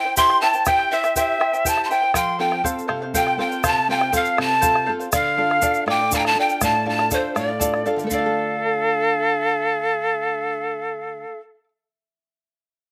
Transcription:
Already playing: G5
0.05 E4 C5 G5
0.17 E4 G4 C5 E5 G5 C6, bombo low, shaker
0.30 bombo rim
0.41 E4 C5 E5 G5 A5
0.54 E4 C5 G5, shaker
0.65 E4 G4 C5 E5 G5, bombo rim, bombo low, shaker
0.79 bombo rim
0.91 E4 C5 E5 G5, shaker
1.04 E4 C5 G5, bombo rim, shaker
1.16 E4 G4 C5 E5 G5, bombo low, shaker
1.40 E4 C5 E5 G5, bombo rim
1.53 E4 C5 G5, bombo rim, shaker
1.65 E4 G4 C5 E5 G5 A5, bombo low, shaker
1.77 bombo rim
1.84 A5 C6
1.90 E4 C5 E5 G5 A5, shaker
1.95 G5
2.02 E4 C5 G5
2.14 F3 A4 C5 F5 G5 C6, bombo rim, bombo low, shaker
2.39 C4 F4 A4 C5 F5 G5, bombo rim
2.51 C5 F5, bombo rim
2.64 C4 F4 A4 C5 F5, bombo rim, bombo low, shaker
2.79 shaker
2.88 C3 A4 C5 F5, bombo rim
3.02 C5 F5
3.14 C4 F4 A4 C5 F5 G5, bombo low, shaker
3.27 bombo rim
3.38 C4 F4 A4 C5 F5 G5, bombo rim
3.50 C5 F5, shaker
3.63 C3 A4 C5 F5 A5, bombo rim, bombo low, shaker
3.88 C4 F4 A4 C5 F5 G5 A5, bombo rim
3.95 G5
4.01 C5 F5, bombo rim
4.12 C4 F4 A4 C5 F5, bombo rim, bombo low, shaker
4.25 shaker
4.37 C3 A4 C5 F5 A5, bombo rim
4.41 A5
4.49 C5 F5
4.61 C4 F4 A4 C5 F5, bombo low, shaker
4.76 bombo rim
4.86 C4 F4 A4 C5 F5, bombo rim
5.00 C5 F5, shaker
5.12 D3 A4 D5 F5, bombo rim, bombo low, shaker
5.37 D4 F4 A4 D5 F5, bombo rim
5.50 D5 F5, bombo rim
5.62 D4 F4 A4 D5 F5, bombo rim, bombo low, shaker
5.74 shaker
5.86 A2 A4 D5 F5 D6, bombo rim
5.90 G5
6.00 D5 F5
6.11 D4 F4 A4 D5 F5 A5, bombo low, shaker
6.15 G5 A5 A#5
6.25 A5, bombo rim
6.35 D4 F4 A4 D5 F5, bombo rim
6.40 G5
6.49 D5 F5, shaker
6.61 A2 A4 D5 F5 A5, bombo rim, bombo low, shaker
6.74 bombo rim
6.85 D4 F4 A4 D5 F5 A5
6.99 D5 F5, bombo rim
7.11 D4 F4 A4 C5 C#5 D5 F5, bombo rim, bombo low, shaker
7.18 C5
7.35 A2 A4 D5 F5, bombo rim, shaker
7.48 D5 F5
7.60 D4 F4 A4 D5 F5, bombo low, shaker
7.74 bombo rim
7.86 D4 F4 A4 D5 F5, shaker
7.96 D3 D5 F5, shaker
8.04 A3 A4
8.10 D4 A4 D5 F5, bombo low, shaker
8.18 F4 F5
8.26 A4

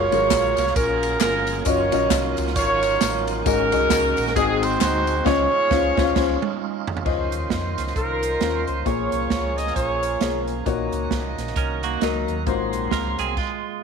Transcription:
Already playing: F#3 A#3 F4 G#4 A#4 C#5
0.11 G#1 F#3 G#3 F4 A#4, ride bell, tambourine
0.31 A#1, kick, snare, clap, ride bell, tambourine
0.57 C2, snare, ride bell, tambourine
0.67 snare
0.76 A#1 C#4 F4 A#4, kick, ride bell, tambourine
1.03 ride bell, tambourine
1.20 G1 C#4 F4 A#4, snare, clap, ride bell, tambourine
1.47 ride bell, tambourine
1.65 F#1 D#3 C#4 F4 F#4 A#4 C#5 D#5, kick, ride bell, tambourine
1.92 A#1 F#3 C#4 F4 D#5, ride bell, tambourine
2.10 C2, kick, snare, clap, ride bell, tambourine
2.37 C#2, ride bell, tambourine
2.47 snare
2.56 G#1 F4 A#4 C#5, kick, ride bell, tambourine
2.82 ride bell, tambourine
3.00 A1, snare, clap, ride bell, tambourine
3.27 ride bell, tambourine
3.45 G#1 G#2 G#3 C#4 F#4 G#4 A#4 D#5, kick, ride bell, tambourine
3.72 C2 C#4 F#4 G#4 D#5, ride bell, tambourine
3.90 C#2, kick, snare, clap, ride bell, tambourine
4.17 A#1, ride bell, tambourine
4.27 snare
4.36 G#1 G#2 C4 D#4 F#4 G#4 D#5, kick, ride bell, tambourine
4.63 C5, ride bell, tambourine
4.81 D2 D#4 F#4 C5, snare, clap, ride bell, tambourine
5.07 ride bell, tambourine
5.25 C#2 C#3 C#4 F4 G#4 C5 C#5 D#5, kick, snare, crash
5.70 C#2 C#4 F4 C5, kick, snare
5.77 F5
5.97 C#2 C#4 F4 C5, kick, snare
6.03 F5
6.15 C#2 C#4 F4 C5, kick, snare, crash
6.22 F5
6.42 high tom
6.87 floor tom
6.97 floor tom
7.05 C#2 C#3 D#3 C#4 F4 C5 D#5 F5 C6, kick, crash
7.32 D#2, closed hi-hat
7.50 F2, kick, snare, closed hi-hat
7.78 C#2, snare, closed hi-hat
7.87 snare
7.96 C2 D#4 F4 A#4, kick, closed hi-hat
8.23 closed hi-hat
8.40 D#2 C#4 F4 C5 F5, snare, closed hi-hat
8.67 C#2 C5, closed hi-hat
8.85 A#1 A#2 F3 A#3 F4 G#4 C#5 G#5 A#5, kick, closed hi-hat
9.12 C2, closed hi-hat
9.30 C#2, kick, snare, closed hi-hat
9.57 D#5, closed hi-hat
9.67 snare
9.76 A#1 F4 G#4 C#5, kick, closed hi-hat
10.03 closed hi-hat
10.21 B1 A#3 F4 G#4 C#5, snare, closed hi-hat
10.47 closed hi-hat
10.66 A#1 A#2 D#3 A#3 D#4 F#4 C#5 D#5, kick, closed hi-hat
10.92 C#2, closed hi-hat
11.11 C2, kick, snare, closed hi-hat
11.38 A#1, snare, closed hi-hat
11.47 snare
11.56 C2 C#4 A#4, kick, closed hi-hat
11.83 A#3 F#4, closed hi-hat
12.01 C#2 F#3 A#3 D#4 F#4 A#4, snare, closed hi-hat
12.28 D#2, closed hi-hat
12.46 G#1 G#2 F#3 A#3 C4 F4 F#4 G#4 C5 F5 A#5 C6, kick, closed hi-hat
12.73 A#1, closed hi-hat
12.91 C#2 A#4, kick, snare, closed hi-hat
13.19 C2 C4 G#4, closed hi-hat
13.37 G#3 F4, kick, crash

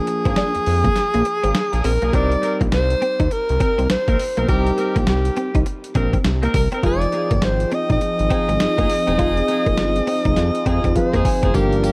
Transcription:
Already playing: F3 A#3 D4 G#4
0.07 muted clean electric guitar stroke, closed hi-hat
0.25 G#1 A#3 C4 D4 G#4, kick, closed hi-hat
0.36 D4, snare, closed hi-hat
0.55 F2, muted clean electric guitar stroke, closed hi-hat
0.66 F2, open hi-hat
0.84 A#3, kick, closed hi-hat
0.96 snare, closed hi-hat
1.14 A#1 A#3, closed hi-hat
1.25 muted clean electric guitar stroke, closed hi-hat
1.43 G#1 A#3 C4 D4 G#4, closed hi-hat
1.55 muted clean electric guitar stroke, snare, closed hi-hat
1.72 A#1 A#3 D4 G#4, closed hi-hat
1.84 A#1 C4 A#4, open hi-hat
2.02 B1 A#3 D4 G#4, closed hi-hat
2.12 C2 G3 C4 D#4 A#4 D5, kick, closed hi-hat
2.32 closed hi-hat
2.42 C4 D#4 A#4, muted clean electric guitar stroke, closed hi-hat
2.61 A#1 A#3, kick, closed hi-hat
2.72 C2 C5, muted clean electric guitar stroke, snare, closed hi-hat
2.90 closed hi-hat
3.02 C4, closed hi-hat
3.20 D#2 D#4, kick, closed hi-hat
3.31 A#4, muted clean electric guitar stroke, closed hi-hat
3.49 C2, closed hi-hat
3.60 C4 D#4 A#4, kick, closed hi-hat
3.78 C2 C4, closed hi-hat
3.90 A#1 C5, snare, closed hi-hat
4.07 A#1 A#3 C4 D#4 A#4, kick, closed hi-hat
4.19 muted clean electric guitar stroke, open hi-hat
4.37 B1 A#3 C4 D#4 A#4, closed hi-hat
4.48 C2 G3 C4 D#4 G4 A#4, kick, closed hi-hat
4.67 closed hi-hat
4.77 C4 D#4 A#4, muted clean electric guitar stroke, closed hi-hat
4.96 A#1 A#3, kick, closed hi-hat
5.07 C2 G4, muted clean electric guitar stroke, snare, closed hi-hat
5.25 closed hi-hat
5.37 C4, closed hi-hat
5.55 C2 D#4, kick, closed hi-hat
5.66 muted clean electric guitar stroke, closed hi-hat
5.84 closed hi-hat
5.95 A#1 C4 D#4 A#4, kick, closed hi-hat
6.13 C4, kick, closed hi-hat
6.24 C2, snare, closed hi-hat
6.43 A#3 C4 D#4 A#4, closed hi-hat
6.54 C2 A#4, muted clean electric guitar stroke, kick, open hi-hat
6.72 C4 D#4 A#4, closed hi-hat
6.83 F1 F3 C4 D#4 F4 G#4 D5 G5, kick, closed hi-hat
7.01 closed hi-hat
7.12 D#4 F4 G#4, muted clean electric guitar stroke, closed hi-hat
7.31 G1 A#3, kick, closed hi-hat
7.42 G#1 C5, muted clean electric guitar stroke, snare, closed hi-hat
7.60 closed hi-hat
7.71 C4 D#5, closed hi-hat
7.90 A#1 D#4 D#5, kick, closed hi-hat
8.01 muted clean electric guitar stroke, closed hi-hat
8.19 G#1, closed hi-hat
8.30 C4 D#4 F4 G#4, kick, closed hi-hat
8.49 G#1 C4, closed hi-hat
8.60 G1, snare, closed hi-hat
8.78 G1 A#3 D#4 F4 G#4, kick, closed hi-hat
8.89 muted clean electric guitar stroke, open hi-hat
9.07 E1 C4 D#4 F4 G#4, closed hi-hat
9.18 F1 F3 C4 D#4 F4 G#4, kick, closed hi-hat
9.37 closed hi-hat
9.48 D#4 F4 G#4, muted clean electric guitar stroke, closed hi-hat
9.66 F1 A#3, kick, closed hi-hat
9.78 G1, muted clean electric guitar stroke, snare, closed hi-hat
9.96 closed hi-hat
10.07 C4, open hi-hat
10.25 F1 D#4, kick, closed hi-hat
10.36 F2, muted clean electric guitar stroke, snare, closed hi-hat
10.55 closed hi-hat
10.66 F2 C4 D#4 F4 G#4, kick, closed hi-hat
10.84 F2 C4, kick, closed hi-hat
10.95 F3 C4 D#4 G#4 C5 F5, kick, closed hi-hat
11.13 F2 A#3 D#4 F4 G#4, kick, closed hi-hat
11.25 G#5, muted clean electric guitar stroke, kick, open hi-hat
11.42 F#1 C4 D#4 F4 G#4, kick, closed hi-hat
11.53 G1 F3 G3 A#3 D4 F4 G4 A#4 D5 F5 A#5, kick, closed hi-hat, tambourine
11.73 closed hi-hat
11.83 A#3 F4 G4, muted clean electric guitar stroke, closed hi-hat, tambourine

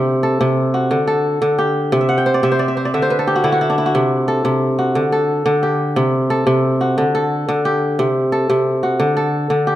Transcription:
Already playing: C3 G4 A4
0.23 A4
0.41 C3
0.74 F#4
0.91 D3
1.07 A4
1.42 D3
1.58 G4
1.92 C3
2.01 E5
2.09 F#5
2.18 G5
2.26 C5
2.34 D5
2.43 C3 E5
2.52 C5
2.59 D5
2.68 E5
2.77 C5
2.85 D5
2.94 D3 E5
3.02 C5
3.10 B4
3.19 A4
3.27 G4
3.36 F#4
3.44 D3 E4
3.52 F#4
3.61 E4
3.70 D4
3.78 E4
3.86 F#4
3.95 C3
4.28 A4
4.45 C3
4.79 F#4
4.95 D3
5.12 A4
5.46 D3
5.63 G4
5.96 C3
6.30 A4
6.47 C3
6.81 F#4
6.98 D3
7.15 A4
7.49 D3
7.65 G4
7.99 C3
8.32 A4
8.50 C3
8.83 F#4
9.00 D3
9.17 A4
9.50 D3
9.67 G4

